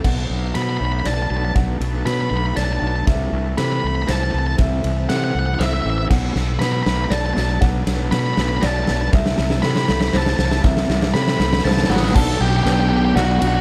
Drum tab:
CC |x-----------------------|------------------------|------------------------|------------------------|
RD |--------x-------x-------|x---x---x-------x-------|x-------x-------x-------|x---x---x-------x-------|
SD |o-------o-------o-------|o-------o-------o-------|o-------o-------o-------|o-------o-------o-------|
BD |o-----------------------|o-----------------------|o-----------------------|o-----------------------|

CC |x-----------------------|------------------------|------------------------|------------------------|
RD |--------x-------x-------|x---x---x-------x-------|------------------------|------------------------|
SD |o---o---o---o---o---o---|o---o---o---o---o---o---|o-o-o-o-o-o-o-o-o-o-o-o-|o-o-o-o-o-o-o-oooooooooo|
BD |o-----------------------|o-----------------------|o-----------------------|o-----------------------|

CC |x-----------------------|
RD |--------x-------x---x---|
SD |--------o-------o-------|
BD |o-----------------------|